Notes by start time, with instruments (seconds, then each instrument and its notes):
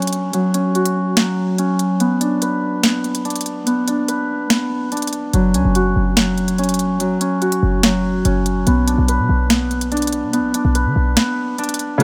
Already playing: harp F#3 B3 C#4 F#4
0.02 closed hi-hat
0.07 closed hi-hat
0.13 closed hi-hat
0.33 harp F#3, closed hi-hat
0.54 harp C#4, closed hi-hat
0.75 harp F#4, closed hi-hat
0.86 closed hi-hat
1.17 harp F#3, snare, closed hi-hat
1.58 harp C#4, closed hi-hat
1.79 closed hi-hat
2.00 harp B3, closed hi-hat
2.21 harp D4, closed hi-hat
2.42 harp B4, closed hi-hat
2.83 harp B3, snare, closed hi-hat
3.04 closed hi-hat
3.15 closed hi-hat
3.25 harp D4, closed hi-hat
3.30 closed hi-hat
3.36 closed hi-hat
3.41 closed hi-hat
3.46 closed hi-hat
3.66 harp B3, closed hi-hat
3.88 harp D4, closed hi-hat
4.08 harp B4, closed hi-hat
4.50 harp B3, snare, closed hi-hat
4.92 harp D4, closed hi-hat
4.97 closed hi-hat
5.02 closed hi-hat
5.07 closed hi-hat
5.13 closed hi-hat
5.33 808-style bass F#1, harp F#3, closed hi-hat
5.54 808-style bass C#2, harp C#4, closed hi-hat
5.65 808-style bass F#1
5.75 harp F#4, closed hi-hat
5.96 808-style bass F#1
6.17 harp F#3, snare, closed hi-hat
6.38 closed hi-hat
6.48 closed hi-hat
6.58 harp C#4, closed hi-hat
6.64 closed hi-hat
6.69 closed hi-hat
6.74 closed hi-hat
6.79 closed hi-hat
7.00 harp F#3, closed hi-hat
7.21 harp C#4, closed hi-hat
7.42 harp F#4, closed hi-hat
7.52 closed hi-hat
7.63 808-style bass F#1
7.83 harp F#3, snare, closed hi-hat
8.25 808-style bass F#1, harp C#4, closed hi-hat
8.46 closed hi-hat
8.67 808-style bass B1, harp B3, closed hi-hat
8.87 harp D4, closed hi-hat
8.98 808-style bass B1
9.08 harp B4, closed hi-hat
9.19 808-style bass B2
9.29 808-style bass B1
9.50 harp B3, snare, closed hi-hat
9.71 closed hi-hat
9.81 closed hi-hat
9.92 harp D4, closed hi-hat
9.97 closed hi-hat
10.02 closed hi-hat
10.07 closed hi-hat
10.13 closed hi-hat
10.23 808-style bass B2
10.33 harp B3, closed hi-hat
10.39 808-style bass B1
10.54 harp D4, closed hi-hat
10.65 808-style bass B1
10.75 harp B4, closed hi-hat
10.85 808-style bass D3
10.96 808-style bass B1
11.17 harp B3, snare, closed hi-hat
11.58 harp D4, closed hi-hat
11.64 closed hi-hat
11.69 closed hi-hat
11.74 closed hi-hat
11.79 closed hi-hat
11.98 grand piano C#3 A3, closed hi-hat